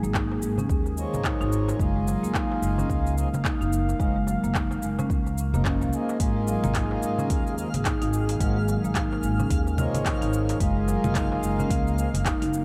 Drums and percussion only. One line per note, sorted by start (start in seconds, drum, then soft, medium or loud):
0.03 darbuka ka soft
0.03 cabasa soft
0.14 kick medium
0.14 clap medium
0.14 cabasa soft
0.32 darbuka tek medium
0.42 cabasa medium
0.58 darbuka dum medium
0.58 cabasa soft
0.69 kick loud
0.69 cabasa soft
0.86 darbuka ka soft
0.86 cabasa soft
0.97 cabasa medium
1.14 darbuka dum medium
1.14 cabasa soft
1.24 kick medium
1.24 clap medium
1.24 cabasa soft
1.41 darbuka ka medium
1.41 cabasa soft
1.52 cabasa medium
1.69 darbuka tek medium
1.69 cabasa soft
1.79 kick loud
1.79 cabasa soft
2.08 darbuka ka soft
2.08 cabasa medium
2.24 cabasa soft
2.35 kick medium
2.35 clap medium
2.35 cabasa soft
2.52 darbuka tek medium
2.63 cabasa medium
2.78 darbuka dum medium
2.78 cabasa soft
2.90 kick loud
2.90 cabasa soft
3.07 cabasa soft
3.18 darbuka ka soft
3.18 cabasa medium
3.34 darbuka dum medium
3.34 cabasa soft
3.45 kick medium
3.45 clap loud
3.45 cabasa soft
3.62 cabasa soft
3.73 cabasa medium
3.89 darbuka ka soft
3.89 cabasa soft
4.00 kick loud
4.00 darbuka tek soft
4.00 cabasa soft
4.27 darbuka ka soft
4.27 cabasa medium
4.44 darbuka ka soft
4.44 cabasa soft
4.55 kick loud
4.55 clap medium
4.55 cabasa soft
4.71 darbuka tek medium
4.71 cabasa soft
4.83 cabasa medium
4.99 darbuka tek medium
4.99 darbuka dum loud
4.99 cabasa soft
5.10 kick loud
5.10 cabasa soft
5.27 darbuka ka soft
5.27 cabasa soft
5.38 cabasa medium
5.54 darbuka dum medium
5.54 cabasa soft
5.65 kick medium
5.65 clap medium
5.65 cabasa soft
5.81 darbuka ka medium
5.81 cabasa soft
5.93 cabasa medium
6.09 darbuka tek medium
6.09 cabasa soft
6.20 kick loud
6.20 open hi-hat medium
6.20 cabasa soft
6.48 darbuka ka soft
6.48 cabasa medium
6.64 low conga medium
6.64 cabasa soft
6.75 kick loud
6.75 clap medium
6.75 open hi-hat medium
6.75 cabasa soft
6.91 darbuka tek medium
7.03 cabasa medium
7.18 darbuka dum medium
7.18 cabasa soft
7.30 kick loud
7.30 open hi-hat medium
7.30 cabasa soft
7.47 cabasa soft
7.58 darbuka ka soft
7.58 cabasa medium
7.74 open hi-hat soft
7.74 darbuka dum medium
7.74 cabasa soft
7.85 kick medium
7.85 clap medium
7.85 open hi-hat medium
7.85 cabasa soft
8.02 open hi-hat soft
8.02 cabasa soft
8.13 cabasa medium
8.29 open hi-hat soft
8.29 darbuka ka soft
8.29 cabasa soft
8.40 kick medium
8.40 open hi-hat medium
8.40 cabasa soft
8.68 darbuka ka soft
8.68 cabasa medium
8.84 darbuka ka soft
8.84 cabasa soft
8.95 kick medium
8.95 clap medium
8.95 open hi-hat medium
8.95 cabasa soft
9.13 darbuka tek soft
9.23 cabasa medium
9.40 darbuka dum medium
9.40 cabasa soft
9.50 kick loud
9.50 open hi-hat medium
9.50 cabasa soft
9.67 darbuka ka soft
9.67 cabasa soft
9.78 low conga medium
9.78 cabasa medium
9.94 open hi-hat soft
9.94 darbuka dum medium
9.94 cabasa soft
10.05 kick medium
10.05 clap medium
10.05 open hi-hat medium
10.05 cabasa soft
10.22 open hi-hat soft
10.22 darbuka ka medium
10.22 cabasa soft
10.33 cabasa medium
10.49 open hi-hat soft
10.49 darbuka tek medium
10.49 cabasa soft
10.60 kick loud
10.60 open hi-hat medium
10.60 cabasa soft
10.88 darbuka ka medium
10.88 cabasa medium
11.04 low conga medium
11.04 cabasa soft
11.15 kick medium
11.15 clap medium
11.15 open hi-hat medium
11.15 cabasa soft
11.32 darbuka tek medium
11.43 cabasa medium
11.60 darbuka dum medium
11.60 cabasa soft
11.70 kick loud
11.70 open hi-hat medium
11.70 cabasa soft
11.87 cabasa soft
11.98 darbuka ka soft
11.98 cabasa medium
12.14 open hi-hat soft
12.14 darbuka dum medium
12.14 cabasa soft
12.25 kick medium
12.25 clap medium
12.25 open hi-hat medium
12.25 cabasa soft
12.42 open hi-hat soft
12.42 cabasa soft
12.54 cabasa medium